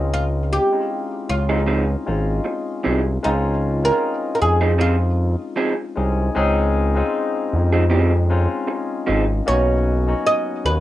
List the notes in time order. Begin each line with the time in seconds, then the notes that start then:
Already playing: C#2 G#3 C4 C#4 D#4 F4
0.14 F4
0.53 G4
0.72 G#3 C4 C#4 D#4 E4
0.80 F4
1.30 C#2 F4
1.49 F3 G#3 C4 C#4 D#4 F4 G#4
1.66 F3 C4 D#4 G#4
2.06 G#1 G#3 C4 C#4 D#4 F4
2.44 muted clean electric guitar stroke
2.84 C2 F3 C4 D#4 G#4
3.23 C#2 G#3 C4 C#4 D#4 F4
3.83 G#3 C4 C#4 D#4 E4 A#4
3.92 F4
4.35 A#4
4.41 F2 G#4
4.61 F3 C4 D#4 G#4
4.78 F3 C4 D#4 F4 G#4
5.56 F3 C4 D#4 G#4
5.96 C2 G#3 C4 C#4 D#4 G#4
6.35 C#2 G#3 C4 C#4 D#4 G#4
6.95 G#3 C4 C#4 D#4 F4
7.53 F2
7.73 F3 C4 D#4 G#4
7.90 F3 C4 D#4 G#4
8.30 G#3 C4 C#4 D#4 F4
8.67 muted clean electric guitar stroke
9.07 G#1 F3 C4 D#4 G#4
9.46 B1 A#3 B3 C#4 D#4 F#4 C#5
10.07 F#3 B3 C#4 D#4 F#4
10.27 D#5
10.65 D#2 B4